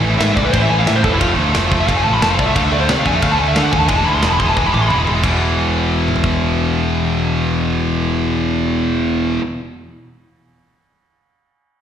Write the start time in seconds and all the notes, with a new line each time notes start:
Already playing: A1
0.01 E3
0.09 A2 E3
0.16 G#2 A2 E3 E5
0.21 A2, snare, ride bell
0.26 E3
0.32 C2 A2 E3 D5
0.37 A2, kick
0.42 E3 B4
0.48 A2 E3
0.53 A1 A2 C5, kick, ride bell
0.57 E3
0.61 A2 E3 E5
0.70 A1 A2 E3 G#5
0.79 A2 E3 F5
0.86 A2 E3 E5, snare, ride bell
0.95 A2 E3 C5
1.03 E1 A2 E3 A4, kick
1.12 A2 E3 E4
1.20 F1 F3 A3 F4, kick, ride bell
1.27 F3 A3
1.36 D2 F3 A3
1.43 F3 A3
1.52 F1 F3 A3, snare, ride bell
1.60 F3 A3
1.67 F3 A3
1.71 F1 F3, kick
1.75 A3
1.80 F3 A3 E5
1.87 F1 A3 F5, kick, ride bell
1.91 F3
1.97 F3 A3 G#5
2.03 A1 F3 A3 A5
2.13 F3 A3 B5
2.22 F1 F3 A3 A5, snare, ride bell
2.30 F3 A3 F5
2.38 C2 F3 A3 D5, kick
2.45 F3 A3 E5
2.55 D2 D3 A3 F5, kick, ride bell
2.62 D3 A3 E5
2.70 D3 A3 D5
2.77 D3 A3 C5
2.85 D3 A3
2.89 C3 D5, snare, ride bell
2.94 D3 A3
2.99 D3 F5
3.03 F2 A3 G#5, kick
3.09 D3 A3
3.13 E5
3.18 D3 A3
3.22 D2 D3 F5, kick, ride bell
3.27 A3
3.32 D3 A3 A5
3.39 D2 D3 A3 G#5
3.47 D3 A3 E5
3.55 D3 F5, snare, ride bell
3.59 A3
3.64 D3 A3 F#5
3.72 D#2 D3 A3 G#5, kick
3.80 D3 A3 A5
3.88 E1 E3 G#3 G#5, kick, ride bell
3.95 E3 G#3 A5
4.02 E3 G#3 B5
4.06 D2
4.11 E3 G#3 C6
4.18 E3 G#3
4.23 E1 E3 B5, snare, ride bell
4.28 E3 G#3 A5
4.34 G#3 B5
4.39 E1 E3 C6, kick
4.44 E3 G#3
4.48 A5
4.53 E3 G#3, high tom
4.57 E1 G#3 G#5, kick
4.62 E3 B5
4.68 E3 G#3
4.74 A1 E3 G#3 D6, mid tom
4.82 E3 G#3 C6
4.89 E1 E3 G#3 B5, mid tom
4.98 E3 G#3
5.06 E1 E3 G#3, floor tom
5.15 E3 G#3
5.21 E1 E2 B2, kick, crash
5.26 E3
6.08 mid tom
6.16 floor tom
6.24 kick